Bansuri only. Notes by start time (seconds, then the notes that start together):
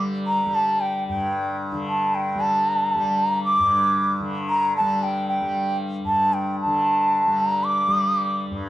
0.27 A#5
0.55 A5
0.80 G5
1.08 G5
1.88 A5
2.15 G5
2.40 A5
3.18 A#5
3.44 D6
4.49 A#5
4.77 A5
5.03 G5
5.29 G5
6.06 A5
6.33 G5
6.61 A5
7.40 A#5
7.64 D6